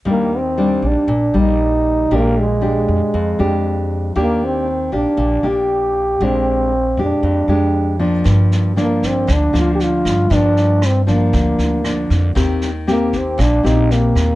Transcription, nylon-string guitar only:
\new Staff \with { instrumentName = "Nylon-string guitar" } { \time 4/4 \key ees \major \tempo 4 = 117 << { <g bes d'>8 r8 <g bes d'>4 r8 <g bes>4. | <aes d' g'>8 r8 <aes d' g'>4 r8 <aes d' g'>4. | <bes d' g'>4 r8 <bes d' g'>4 <bes d' g'>4. | <aes d' g'>4 r8 <aes d' g'>4 <aes d' g'>4 <f bes d'>8~ |
<f bes d'>4 <f bes d'>4. <f bes d'>4. | <f bes d'>4 r8 <f bes d'>4. <f bes d'>4 | <bes c' g'>8 r8 <bes c' g'>4 r8 <bes c' g'>4. | } \\ { ees2 bes,2 | bes,2 f,2 | ees2 bes,2 | bes,2 f,2 |
g,2 d2 | g,2 d2 | ees2 bes,2 | } >> }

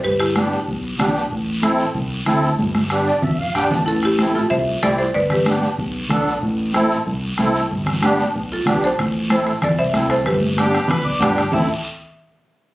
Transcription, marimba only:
\new Staff \with { instrumentName = "Marimba" } { \time 4/4 \key a \minor \tempo 4 = 188 <g' b'>8 <e' g'>2 r4. | r1 | r1 | <e' a'>8 <e' g'>4 <f' a'>8 <c'' e''>4 <a' d''>8 <a' c''>8 |
<b' d''>8 <g' b'>2 r4. | r1 | r2 r8 <f' a'>4 <a' c''>8~ | <a' c''>4 <a' c''>4 <a' d''>8 <c'' e''>4 <a' c''>8 |
<g' b'>2. r4 | e''8 r2. r8 | }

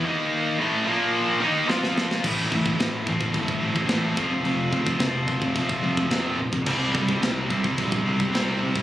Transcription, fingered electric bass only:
\new Staff \with { instrumentName = "Fingered electric bass" } { \clef bass \time 4/4 \key a \phrygian \tempo 4 = 108 r1 | a,,8 a,,8 a,,8 a,,8 g,,8 a,,8 a,,8 f,,8 | f,,8 f,,8 f,,8 f,,8 f,,8 f,,8 f,,8 bes,,8 | c,8 c,8 c,8 c,8 bes,,8 c,8 c,8 c8 | }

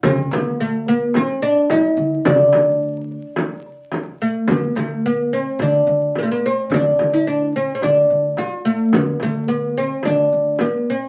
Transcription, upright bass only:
\new Staff \with { instrumentName = "Upright bass" } { \clef bass \time 4/4 \tempo 4 = 108 d,8 d,2 r4 d,8 | d,2 r2 | d,8 d,4. d,8 d,8 r4 | d,8 d,4. d,8 d,8 r4 |
d,8 d,4. d,8 d,8 r4 | }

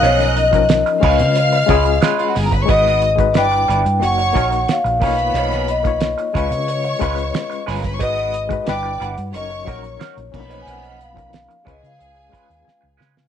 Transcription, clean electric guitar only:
\new Staff \with { instrumentName = "Clean electric guitar" } { \time 4/4 \key des \mixolydian \tempo 4 = 90 <eis cis' dis' ais'>8 r4 <aes des' f' ces''>16 r8. <aes des' f' ces''>16 r16 <aes des' f' ces''>8 r8 | <ces' ees' ges' ces''>8 r4 <g d' e' b'>16 r8. <ges des' ees' bes'>16 r8. <eis cis' dis' ais'>16 r16 | <eis cis' dis' ais'>8 r4 <aes des' f' ces''>16 r8. <aes des' f' ces''>16 r8. <aes des' f' ces''>16 r16 | <ces' ees' ges' ces''>8 r4 <g d' e' b'>16 r8. <bes ees' ges' bes'>16 r16 <bes ees' ges' bes'>16 r8 <eis cis' dis' ais'>16 |
<eis cis' dis' ais'>8 r4 <aes des' f' ces''>16 r8. <aes des' f' ces''>16 r8. <aes des' f' ces''>16 r16 | }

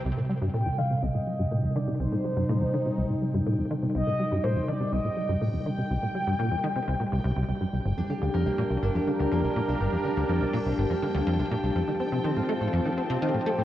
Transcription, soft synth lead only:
\new Staff \with { instrumentName = "Soft synth lead" } { \time 4/4 \key c \dorian \tempo 4 = 123 r4 g''8 f''8 ees''4. d''8 | c''2. r4 | ees''4 c''8 d''8 ees''4 r8 g''8~ | g''2.~ g''8 r8 |
r1 | r1 | r1 | }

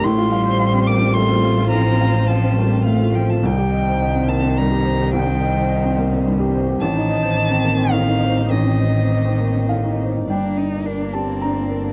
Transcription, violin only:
\new Staff \with { instrumentName = "Violin" } { \time 3/4 \key g \minor \tempo 4 = 106 c'''4. d'''8 c'''4 | bes''4 a''4 f''8 g''16 a''16 | g''4. a''8 bes''4 | g''4. r4. |
a''2 f''4 | ees''2~ ees''8 r8 | g16 bes16 d'16 bes16 g16 bes16 d'16 bes16 g16 bes16 d'16 bes16 | }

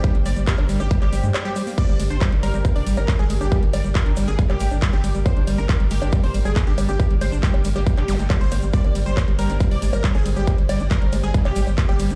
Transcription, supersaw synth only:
\new Staff \with { instrumentName = "Supersaw synth" } { \time 4/4 \key g \phrygian \tempo 4 = 138 g'16 r16 d''16 r16 bes'8 r16 g'16 r16 g'8 r8 g'8 r16 | d''8 r16 c''8 r16 bes'8 r16 d''16 r16 bes'16 r16 aes'16 r16 g'16~ | g'16 r16 d''16 r16 bes'8 r16 aes'16 r16 g'8 r8 g'8 r16 | c''8 r16 bes'8 r16 g'8 r16 c''16 r16 aes'16 r16 g'16 r16 g'16~ |
g'16 r16 c''16 r16 g'8 r16 g'16 r16 g'8 r8 c''8 r16 | d''8 r16 c''8 r16 bes'8 r16 d''16 r16 bes'16 r16 aes'16 r16 g'16~ | g'16 r16 d''16 r16 bes'8 r16 aes'16 r16 g'8 r8 g'8 r16 | }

